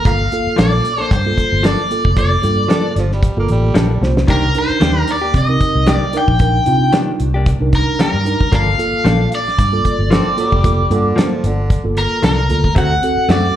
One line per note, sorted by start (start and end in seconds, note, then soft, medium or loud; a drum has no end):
0.05 0.26 G1 medium
0.05 0.23 A#3 medium
0.05 0.23 F4 medium
0.05 0.24 A4 medium
0.05 0.55 F5 loud
0.05 kick loud
0.05 closed hi-hat medium
0.32 0.91 A#3 medium
0.32 0.92 F4 medium
0.32 0.92 A4 medium
0.32 closed hi-hat medium
0.47 muted fingered electric bass stroke soft
0.56 0.79 A#1 medium
0.56 0.74 F3 medium
0.56 0.75 A#3 medium
0.56 0.75 D4 medium
0.56 0.75 A4 medium
0.56 1.02 D5 medium
0.56 snare loud
0.56 closed hi-hat medium
0.85 closed hi-hat medium
0.98 1.15 A#3 soft
0.98 1.14 D4 soft
0.98 1.13 A4 soft
0.98 1.13 C5 medium
1.11 1.32 G2 medium
1.11 1.65 C5 medium
1.11 kick loud
1.11 closed hi-hat medium
1.25 1.67 A#3 medium
1.25 1.67 F4 medium
1.25 1.67 A4 medium
1.38 kick medium
1.38 closed hi-hat medium
1.52 1.73 G1 medium
1.63 1.81 F3 medium
1.63 1.81 A#3 medium
1.63 1.81 D4 medium
1.63 1.82 A4 medium
1.63 2.17 D5 medium
1.63 snare loud
1.63 closed hi-hat medium
1.90 2.08 A#3 medium
1.90 2.09 F4 medium
1.90 2.09 A4 medium
1.90 closed hi-hat medium
2.05 2.35 F1 medium
2.05 kick medium
2.17 2.35 A#3 medium
2.17 2.35 F4 medium
2.17 2.36 A4 medium
2.17 2.93 D5 medium
2.17 kick loud
2.17 closed hi-hat medium
2.42 2.64 G2 medium
2.42 3.03 A#3 medium
2.42 3.03 F4 medium
2.42 3.03 A4 medium
2.42 closed hi-hat medium
2.68 2.86 F3 medium
2.68 2.86 A#3 medium
2.68 2.87 D4 medium
2.68 2.87 A4 medium
2.68 snare medium
2.68 closed hi-hat medium
2.96 3.28 G1 medium
2.96 3.11 F3 medium
2.96 snare soft
2.96 closed hi-hat medium
3.11 3.38 G3 medium
3.11 snare soft
3.23 kick loud
3.23 closed hi-hat medium
3.37 3.46 G1 medium
3.37 3.78 A#3 medium
3.37 3.49 A#3 medium
3.37 3.78 F4 medium
3.37 3.79 A4 medium
3.48 3.73 A1 medium
3.48 4.16 G3 medium
3.48 closed hi-hat medium
3.74 3.99 A#1 medium
3.74 3.92 F3 medium
3.74 3.92 A#3 medium
3.74 3.93 D4 medium
3.74 3.93 A4 medium
3.74 snare loud
3.74 closed hi-hat medium
4.01 4.25 C2 medium
4.01 4.20 A#3 medium
4.01 4.20 F4 medium
4.01 4.20 C5 medium
4.01 snare medium
4.17 snare medium
4.28 4.49 C2 medium
4.28 4.45 D#3 medium
4.28 4.45 A#3 medium
4.28 4.46 D4 medium
4.28 4.46 D#4 medium
4.28 4.46 G4 medium
4.28 4.47 A#4 medium
4.28 4.57 A#4 medium
4.28 kick loud
4.28 closed hi-hat medium
4.55 5.15 D4 medium
4.55 5.15 D#4 medium
4.55 5.15 A#4 medium
4.55 5.01 C5 medium
4.55 closed hi-hat medium
4.70 muted fingered electric bass stroke soft
4.80 5.02 D#2 medium
4.80 4.98 D#3 medium
4.80 4.98 A#3 medium
4.80 4.98 D4 medium
4.80 4.99 G4 medium
4.80 snare medium
4.80 closed hi-hat medium
5.01 5.11 A#4 medium
5.08 closed hi-hat medium
5.12 5.37 D5 medium
5.21 5.38 A#3 soft
5.21 5.38 D4 soft
5.21 5.37 G4 soft
5.34 5.55 C3 medium
5.34 5.93 D#5 medium
5.34 kick loud
5.34 closed hi-hat medium
5.48 5.90 C4 medium
5.48 5.90 D#4 medium
5.48 5.90 A#4 medium
5.61 kick medium
5.61 closed hi-hat medium
5.75 5.96 C2 medium
5.86 6.04 D#3 medium
5.86 6.04 A#3 medium
5.86 6.05 D4 medium
5.86 6.05 G4 medium
5.86 snare loud
5.86 closed hi-hat medium
5.93 6.17 D5 medium
6.13 6.31 D4 medium
6.13 6.32 D#4 medium
6.13 6.32 A#4 medium
6.13 closed hi-hat medium
6.18 6.91 G5 loud
6.28 6.58 A#1 medium
6.28 kick medium
6.39 6.58 D4 medium
6.39 6.58 D#4 medium
6.39 6.59 A#4 medium
6.39 kick loud
6.39 closed hi-hat medium
6.66 6.88 C3 medium
6.66 7.26 D4 medium
6.66 7.26 D#4 medium
6.66 7.27 F4 medium
6.66 closed hi-hat medium
6.93 7.10 D#3 medium
6.93 7.10 A#3 medium
6.93 7.11 D4 medium
6.93 7.11 G4 medium
6.93 snare loud
6.93 closed hi-hat medium
7.20 7.52 C2 medium
7.20 closed hi-hat medium
7.34 7.51 A#3 soft
7.34 7.50 D4 soft
7.34 7.49 G4 soft
7.46 kick loud
7.46 closed hi-hat medium
7.60 7.82 C2 medium
7.60 8.02 D4 medium
7.60 8.02 D#4 medium
7.60 8.02 A#4 medium
7.73 8.00 A#4 medium
7.73 kick medium
7.73 closed hi-hat medium
7.99 8.16 D#3 medium
7.99 8.17 A#3 medium
7.99 8.17 D4 medium
7.99 8.17 G4 medium
7.99 8.55 A#4 medium
7.99 snare loud
7.99 closed hi-hat medium
8.14 8.34 G2 medium
8.25 8.43 D4 medium
8.25 8.43 D#4 medium
8.25 8.44 A#4 medium
8.25 closed hi-hat medium
8.41 kick medium
8.51 8.73 G1 medium
8.51 8.69 F3 medium
8.51 8.69 A#3 medium
8.51 8.70 D4 medium
8.51 8.70 F4 medium
8.51 8.70 A4 medium
8.51 9.29 F5 medium
8.51 kick loud
8.51 closed hi-hat medium
8.78 9.38 A#3 medium
8.78 9.38 F4 medium
8.78 9.39 A4 medium
8.78 closed hi-hat medium
8.93 muted fingered electric bass stroke soft
9.05 9.26 A#1 medium
9.05 9.22 F3 medium
9.05 9.22 A#3 medium
9.05 9.22 D4 medium
9.05 9.23 A4 medium
9.05 snare loud
9.05 closed hi-hat medium
9.32 11.94 D5 medium
9.32 closed hi-hat medium
9.48 snare soft
9.59 9.79 G2 medium
9.59 kick loud
9.59 closed hi-hat medium
9.72 10.13 A#3 medium
9.72 10.14 F4 medium
9.72 10.14 A4 medium
9.85 kick medium
9.85 closed hi-hat medium
9.99 10.20 G1 medium
10.11 10.28 F3 medium
10.11 10.28 A#3 medium
10.11 10.38 C4 medium
10.11 10.29 D4 medium
10.11 10.29 A4 medium
10.11 snare loud
10.11 closed hi-hat medium
10.37 10.94 G3 medium
10.37 10.55 A#3 medium
10.37 10.55 F4 medium
10.37 10.56 A4 loud
10.37 closed hi-hat medium
10.52 10.82 F1 medium
10.52 kick medium
10.63 10.81 A#3 medium
10.63 10.82 F4 medium
10.63 10.82 A4 medium
10.63 kick loud
10.63 closed hi-hat medium
10.90 11.11 G2 medium
10.90 11.17 D3 medium
10.90 11.50 A#3 medium
10.90 11.50 F4 medium
10.90 11.51 A4 loud
10.90 closed hi-hat medium
11.16 11.33 F3 medium
11.16 11.48 F3 medium
11.16 11.34 A#3 medium
11.16 11.34 D4 medium
11.16 11.35 A4 medium
11.16 snare loud
11.16 closed hi-hat medium
11.44 11.76 G1 medium
11.44 11.85 D3 medium
11.44 closed hi-hat medium
11.70 kick loud
11.70 closed hi-hat medium
11.84 12.05 G1 medium
11.84 12.25 A#3 medium
11.84 12.26 F4 medium
11.84 12.26 A4 medium
11.97 12.22 A#4 medium
11.97 closed hi-hat medium
12.23 12.47 C2 medium
12.23 12.40 F3 medium
12.23 12.40 A#3 medium
12.23 12.41 D4 medium
12.23 12.41 A4 medium
12.23 12.73 A#4 medium
12.23 snare loud
12.23 closed hi-hat medium
12.49 12.74 D2 medium
12.49 12.67 A#3 medium
12.49 12.68 F4 medium
12.49 12.68 A4 medium
12.49 closed hi-hat medium
12.64 kick medium
12.75 12.97 D2 medium
12.75 12.93 A3 medium
12.75 12.94 C4 medium
12.75 12.93 C4 medium
12.75 12.94 F#4 medium
12.75 12.95 A4 medium
12.75 13.31 F#5 medium
12.75 kick loud
12.75 closed hi-hat medium
13.03 13.56 C4 medium
13.03 13.56 F#4 medium
13.03 13.56 A4 medium
13.03 closed hi-hat medium
13.17 muted fingered electric bass stroke soft
13.29 13.50 F#2 medium
13.29 13.46 A3 medium
13.29 13.47 C4 medium
13.29 13.47 F#4 medium
13.29 13.56 D5 medium
13.29 snare loud
13.29 closed hi-hat medium